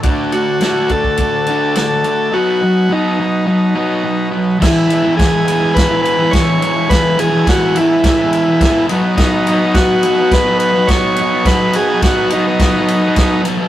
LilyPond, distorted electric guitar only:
\new Staff \with { instrumentName = "Distorted electric guitar" } { \clef bass \time 4/4 \key b \dorian \tempo 4 = 105 <d a d'>8 <d a>8 <d a d'>8 <d a>8 <d a>8 <d a d'>8 <d a>8 <d a>8 | <b, fis b>8 <b, fis>8 <b, fis b>8 <b, fis>8 <b, fis>8 <b, fis b>8 <b, fis>8 <b, fis>8 | \key e \major <e, b, e>8 <e, b, e>16 <b, e>16 <e, b, e>8 <e, b, e>16 <b, e>8 <b, e>8 <b, e>16 <e, b, e>8 <e, b, e>16 <b, e>16 | <e, b, e>8 <e, b, e>16 <b, e>16 <e, b, e>8 <e, b, e>16 <b, e>8 <b, e>8 <b, e>16 <e, b, e>8 <b, fis b>16 <fis b>16 |
<b, fis b>8 <b, fis b>16 <fis b>16 <b, fis b>8 <b, fis b>16 <fis b>8 <fis b>8 <fis b>16 <b, fis b>8 <b, fis b>16 <fis b>16 | <b, fis b>8 <b, fis b>16 <fis b>16 <b, fis b>8 <b, fis b>16 <fis b>8 <fis b>8 <fis b>16 <b, fis b>8 <b, fis b>16 <fis b>16 | }